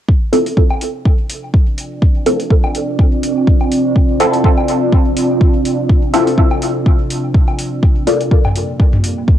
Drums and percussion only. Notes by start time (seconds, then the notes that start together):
0.09 kick
0.33 open hi-hat
0.46 open hi-hat
0.57 kick
0.70 low woodblock
0.81 open hi-hat
1.05 kick
1.30 open hi-hat
1.54 kick
1.78 open hi-hat
2.02 kick
2.26 open hi-hat
2.40 open hi-hat
2.51 kick
2.64 low woodblock
2.75 open hi-hat
2.99 kick
3.23 open hi-hat
3.47 kick
3.61 low woodblock
3.72 open hi-hat
3.96 kick
4.20 open hi-hat
4.33 open hi-hat
4.44 kick
4.58 low woodblock
4.68 open hi-hat
4.93 kick
5.17 open hi-hat
5.41 kick
5.65 open hi-hat
5.89 kick
6.13 open hi-hat
6.27 open hi-hat
6.38 kick
6.51 low woodblock
6.62 open hi-hat
6.86 kick
7.10 open hi-hat
7.34 kick
7.48 low woodblock
7.59 open hi-hat
7.83 kick
8.07 open hi-hat
8.21 open hi-hat
8.31 kick
8.45 mid tom, low woodblock
8.55 open hi-hat
8.80 kick
8.93 mid tom
9.04 open hi-hat
9.28 kick